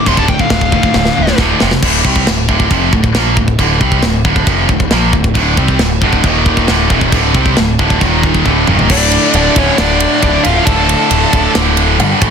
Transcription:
0.06 D1 D2 A2 D3 C6, kick, china
0.17 A5, kick
0.28 D2 A2 G5, kick
0.38 D2 A2 F5, kick
0.49 D1 D2 A2 F5, kick, snare, china
0.61 kick
0.72 D2 A2 D3, kick
0.76 D2
0.83 D2 A2, kick
0.94 D1 D2 A2, kick, snare
1.05 snare
1.17 D1 D2 A2
1.27 D2 A2, snare
1.38 D1 D2 A2 D3, kick, snare
1.60 F1 F2 C3 F3, snare
1.71 F2 C3, snare
1.83 D1 D2 A2 D3, kick, crash, china
2.04 C2 C3 G3 C4, kick
2.16 kick
2.27 D1 D2 A2, snare, china
2.48 D1 D2 A2 D3, kick
2.60 kick
2.70 F1 F2 C3 F3, kick, china
2.92 D1 D2 A2, kick
3.04 kick
3.15 A#1 A#2 F3 A#3, snare, china
3.36 D1 D2 A2, kick
3.48 kick
3.58 D1 D2 A2 D3, kick, china
3.81 C2 C3 G3 C4, kick
3.92 kick
4.03 D1 D2 A2, snare, china
4.24 D1 D2 A2 D3, kick
4.36 kick
4.46 F1 F2 C3 F3, kick, china
4.69 D1 D2 A2, kick
4.80 kick
4.91 A#1 A#2 F3 A#3, snare, china
5.13 D1 D2 A2, kick
5.24 kick
5.35 D1 D2 A2 D3, kick, china
5.57 C2 C3 G3 C4, kick
5.68 kick
5.79 D1 D2 A2, snare, china
6.01 D1 D2 A2 D3, kick
6.13 kick
6.23 D#1 D#2 A#2 D#3, kick, china
6.46 kick
6.57 kick
6.68 D1 D2 A2 D3, snare, china
6.90 D#1 D#2 A#2 D#3, kick
7.01 kick
7.12 D1 D2 A2 D3, kick, china
7.34 C2 C3 G3 C4, kick
7.46 kick
7.57 D1 D2 A2, snare, china
7.79 D1 D2 A2 D3, kick
7.90 kick
8.01 D#1 D#2 A#2 D#3, kick, china
8.23 kick
8.35 kick
8.46 D1 D2 A2 D3, kick
8.67 D#1 D#2 A#2 D#3, mid tom
8.79 floor tom
8.90 D1 D2 A2 D3 D4 A4 D5 E5 F5, kick, crash
9.12 ride
9.34 D1 D2 A2 D3 D4 D5, ride
9.56 D1 D2 A2 D3 C#4 C#5, kick, ride
9.78 D1 D2 A2 D3 D4 D5, snare, ride
10.00 ride
10.22 D1 D2 A2 D3 D4 D5, kick, ride
10.44 D1 D2 A2 D3 F4 F5, ride
10.65 D1 D2 A2 D3 A4 A5, kick, ride
10.89 ride
11.11 D1 D2 A2 D3, ride
11.33 D1 D2 A2 D3, kick, ride
11.55 D1 D2 A2 D3, snare, ride
11.77 ride
11.99 G1 G2 D3 G3 A4 G5, ride
12.21 A1 A2 E3 A3 E4 A5, kick, ride

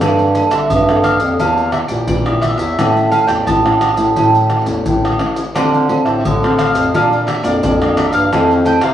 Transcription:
0.01 G2 G3 A#3 D4 A4 D5, pandeiro, tamborim, low agogo, maracas, surdo
0.19 pandeiro, maracas
0.35 A#3 D4 A4, pandeiro, low agogo, maracas
0.51 D3 E5, pandeiro, tamborim, maracas, surdo
0.70 G2 D3, pandeiro, high agogo, maracas, surdo
0.89 A#3 D4 A4, pandeiro, tamborim, maracas
1.04 F5, pandeiro, tamborim, high agogo, maracas
1.20 F2, pandeiro, maracas, surdo
1.39 E2 E3 A#3 G4 F5, pandeiro, low agogo, maracas, surdo
1.57 pandeiro, maracas
1.72 E5, pandeiro, tamborim
1.88 A#2 A#3 E4 G4 D5, pandeiro, maracas, surdo
2.08 A#2 E3 D5, pandeiro, maracas, surdo
2.26 A#3 E4 G4, pandeiro, tamborim, high agogo, maracas, surdo
2.42 E5, pandeiro, tamborim, maracas, surdo
2.57 E2 E5, pandeiro, maracas
2.79 A2 A3 C#4 E4, pandeiro, tamborim, low agogo, maracas, surdo
2.97 pandeiro, maracas
3.11 A3 C#4 E4 F5, pandeiro, low agogo, maracas
3.27 E2 G5, pandeiro, tamborim, maracas, surdo
3.47 A2 E3 A5, pandeiro, high agogo, maracas, surdo
3.65 A3 C#4 E4, pandeiro, tamborim, maracas
3.81 pandeiro, tamborim, high agogo, maracas
3.97 A2 A3 C#4 E4, pandeiro, maracas, surdo
4.16 A2 A3 C#4 E4, pandeiro, low agogo, maracas, surdo
4.35 pandeiro, maracas
4.50 pandeiro, tamborim, maracas
4.66 E2 A3 C#4 E4, pandeiro, maracas, surdo
4.86 A2 E3, pandeiro, maracas, surdo
5.05 pandeiro, tamborim, high agogo, maracas, surdo
5.19 A3 C#4 E4, pandeiro, tamborim
5.36 pandeiro, maracas
5.55 D3 A3 C4 D4 F4 A4 C5 D5 F5, pandeiro, tamborim, low agogo, maracas, surdo
5.74 A4 C5 F5, pandeiro, maracas
5.88 A3 C4 F4, muted cavaquinho stroke, pandeiro, low agogo
6.05 A2 A4 C5 E5, pandeiro, tamborim, maracas, surdo
6.25 A2 D3, pandeiro, high agogo, maracas, surdo
6.43 A3 C4 F4 A4 C5 F5, pandeiro, tamborim, maracas
6.58 D4 A4 C5 F5, pandeiro, tamborim, high agogo, maracas
6.74 F2 A4 C5 F5, pandeiro, maracas, surdo
6.93 A#2 A#3 D4 F4 A#4 D5 F5, pandeiro, low agogo, maracas, surdo
7.12 A#4 D5 F5, pandeiro, maracas
7.27 E5, muted cavaquinho stroke, pandeiro, tamborim, maracas
7.43 F2 A#3 D4 F4 A#4 D5 F5, pandeiro, maracas, surdo
7.63 F2 F3 D5, pandeiro, maracas, surdo
7.81 A#3 D4 F4 A#4 D5 F5, pandeiro, tamborim, high agogo, maracas, surdo
7.97 D4 A#4 D5 E5 F5, pandeiro, tamborim, maracas
8.12 G2 A#4 D5 F5, pandeiro, maracas
8.32 F2 F3 A3 C4 E4 A4 C5 F5, pandeiro, tamborim, low agogo, maracas, surdo
8.51 A4 C5 F5, pandeiro, maracas
8.65 A3 C4 E4 G5, muted cavaquinho stroke, pandeiro, low agogo, maracas
8.81 C3 A4 C5 F5, pandeiro, tamborim, maracas, surdo

